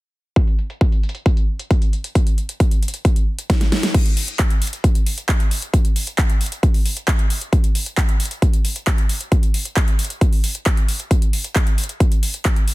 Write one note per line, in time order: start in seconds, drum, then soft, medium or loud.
0.36 kick loud
0.36 closed hi-hat medium
0.47 closed hi-hat soft
0.59 closed hi-hat soft
0.70 closed hi-hat soft
0.81 kick loud
0.81 closed hi-hat medium
0.92 closed hi-hat medium
1.03 closed hi-hat soft
1.09 closed hi-hat medium
1.15 closed hi-hat soft
1.26 kick loud
1.26 closed hi-hat medium
1.37 closed hi-hat soft
1.59 closed hi-hat soft
1.71 kick loud
1.71 closed hi-hat medium
1.82 closed hi-hat soft
1.93 closed hi-hat soft
2.04 closed hi-hat soft
2.15 kick loud
2.15 closed hi-hat medium
2.27 closed hi-hat soft
2.38 closed hi-hat soft
2.49 closed hi-hat soft
2.60 kick loud
2.60 closed hi-hat medium
2.71 closed hi-hat medium
2.83 closed hi-hat soft
2.88 closed hi-hat medium
2.94 closed hi-hat soft
3.05 kick loud
3.05 closed hi-hat medium
3.16 closed hi-hat soft
3.39 closed hi-hat soft
3.50 kick loud
3.50 snare medium
3.50 closed hi-hat medium
3.61 snare medium
3.61 closed hi-hat soft
3.72 snare medium
3.72 closed hi-hat soft
3.83 snare medium
3.83 closed hi-hat soft
3.94 kick loud
3.94 closed hi-hat medium
3.94 crash medium
4.06 closed hi-hat medium
4.17 open hi-hat loud
4.28 closed hi-hat medium
4.39 kick loud
4.39 clap loud
4.39 closed hi-hat medium
4.50 closed hi-hat medium
4.62 open hi-hat loud
4.67 closed hi-hat medium
4.73 closed hi-hat medium
4.84 kick loud
4.84 closed hi-hat medium
4.95 closed hi-hat medium
5.06 open hi-hat loud
5.18 closed hi-hat medium
5.29 kick loud
5.29 clap loud
5.29 closed hi-hat medium
5.40 closed hi-hat medium
5.51 open hi-hat loud
5.62 closed hi-hat soft
5.74 kick loud
5.74 closed hi-hat medium
5.85 closed hi-hat soft
5.96 open hi-hat loud
6.07 closed hi-hat medium
6.18 kick loud
6.18 clap loud
6.18 closed hi-hat medium
6.30 closed hi-hat medium
6.41 open hi-hat loud
6.46 closed hi-hat medium
6.52 closed hi-hat medium
6.63 kick loud
6.63 closed hi-hat medium
6.74 open hi-hat medium
6.86 open hi-hat loud
6.97 closed hi-hat medium
7.08 kick loud
7.08 clap loud
7.08 closed hi-hat medium
7.19 closed hi-hat soft
7.30 open hi-hat loud
7.41 closed hi-hat soft
7.53 kick loud
7.53 closed hi-hat medium
7.64 closed hi-hat soft
7.75 open hi-hat loud
7.86 closed hi-hat soft
7.97 kick loud
7.97 clap loud
7.97 closed hi-hat medium
8.09 closed hi-hat soft
8.20 open hi-hat loud
8.25 closed hi-hat medium
8.31 closed hi-hat soft
8.42 kick loud
8.42 closed hi-hat medium
8.53 closed hi-hat soft
8.65 open hi-hat loud
8.76 closed hi-hat soft
8.87 kick loud
8.87 clap loud
8.87 closed hi-hat medium
8.98 closed hi-hat soft
9.09 open hi-hat loud
9.21 closed hi-hat soft
9.32 kick loud
9.32 closed hi-hat medium
9.43 closed hi-hat soft
9.54 open hi-hat loud
9.65 closed hi-hat soft
9.77 kick loud
9.77 clap loud
9.77 closed hi-hat medium
9.88 closed hi-hat soft
9.99 open hi-hat loud
10.05 closed hi-hat medium
10.10 closed hi-hat soft
10.21 kick loud
10.21 closed hi-hat medium
10.33 open hi-hat medium
10.44 open hi-hat loud
10.55 closed hi-hat soft
10.66 kick loud
10.66 clap loud
10.66 closed hi-hat medium
10.77 closed hi-hat soft
10.88 open hi-hat loud
11.00 closed hi-hat soft
11.11 kick loud
11.11 closed hi-hat medium
11.22 closed hi-hat soft
11.33 open hi-hat loud
11.44 closed hi-hat soft
11.56 kick loud
11.56 clap loud
11.56 closed hi-hat medium
11.67 closed hi-hat soft
11.78 open hi-hat loud
11.84 closed hi-hat medium
11.89 closed hi-hat soft
12.00 kick loud
12.00 closed hi-hat medium
12.12 closed hi-hat soft
12.23 open hi-hat loud
12.34 closed hi-hat soft
12.45 kick loud
12.45 clap loud
12.45 closed hi-hat medium
12.56 closed hi-hat soft
12.68 open hi-hat loud